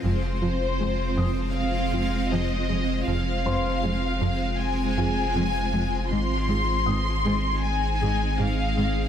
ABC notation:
X:1
M:4/4
L:1/8
Q:1/4=79
K:Fm
V:1 name="Grand piano"
z3 e'4- e'- | e' [cc']4 [Aa]3- | [Aa]2 e'6 |]
V:2 name="Violin section"
c4 f2 e2 | f4 a4 | c'4 a2 f2 |]
V:3 name="Ambient pad"
[A,CFc]8 | [A,CFc]8 | [A,CEA]8 |]
V:4 name="Synth pluck" clef=bass
F, F A, F, z F F, A, | F, F A, F, z F F, A, | A, A C A, z A A, C |]
V:5 name="Cello section" clef=bass
F,, F,, F,, F,, z F,, F,, F,, | F,, F,, F,, F,, z F,, F,, F,, | A,, A,, A,, A,, z A,, A,, A,, |]
V:6 name="Sub bass" clef=bass
F,,,8 | F,,,8 | A,,,8 |]